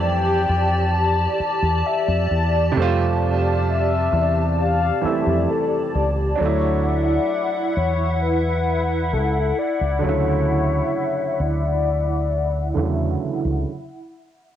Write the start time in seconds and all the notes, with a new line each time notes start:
Already playing: F2 E3 G3 A3 C4 G4 D5 A5
0.05 G5
0.49 F2
0.96 A5
1.40 A5, muted fingered electric bass stroke
1.62 E2
1.86 E5
2.08 F2
2.31 E2
2.72 C3 G3
2.76 F2 A3 C4
2.82 F4
3.68 E5
4.13 E2
4.60 F5
5.02 E3 G3 A3 C4 E5, muted fingered electric bass stroke
5.07 E4
5.27 F2
5.51 A4
5.95 C#2 D5
6.36 F#3 D4 E4 E5 F#5
6.40 D2 A3 C#5
6.45 E4
6.86 D5
7.77 E2 C#5
8.22 B4
9.13 C#2 A4
9.58 D5
9.81 C#2
9.99 D3 F#3
10.03 D2 C#3 A3 C#5 E5
10.09 E4
11.34 C#5
11.40 D2 D5
12.74 E2 D3 E3 A3
12.78 C#3 F#3 E4
13.45 C#2